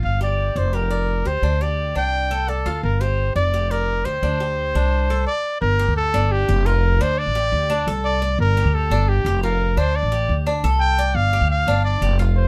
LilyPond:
<<
  \new Staff \with { instrumentName = "Trumpet" } { \time 4/4 \key g \minor \tempo 4 = 173 f''8 d''4 c''8 bes'4. c''8~ | c''8 d''4 g''4. a'4 | bes'8 c''4 d''4 bes'4 c''8~ | c''2. d''4 |
bes'4 a'4 g'4 bes'4 | c''8 d''2 r8 d''4 | bes'4 a'4 g'4 bes'4 | c''8 d''4 r4. g''4 |
f''4 f''4 d''4 r8 c''8 | }
  \new Staff \with { instrumentName = "Cuban tres" } { \time 4/4 \key g \minor f'8 g'4 d''8 g'8 d''4 g'8 | d'8 g'4 d'4 a'8 d''8 f'8~ | f'8 g'4 d''8 g'8 d''4 g'8 | d'8 g'4 d'4 a'8 r4 |
r8 g'4 d'4 g'8 f'4 | d'4 g'4 d'8 a'4 d''8~ | d''8 g'4 d'4 g'8 f'4 | d'4 g'4 d'8 a'4 d''8~ |
d''8 g'4 d'4 g'8 f'4 | }
  \new Staff \with { instrumentName = "Upright bass" } { \clef bass \time 4/4 \key g \minor g,,4. f,,2 d,8 | d,4. c,2 d,8 | g,,4. f,,2 d,8 | d,4. c,4. r4 |
g,,8. d,8. g,,4 f,,4. | d,8. a,,8. d,4 c,4. | g,,8. d,8. g,,4 f,,4. | d,8. a,,8. d,4 c,4. |
g,,8. d,8. g,,4 f,,4. | }
>>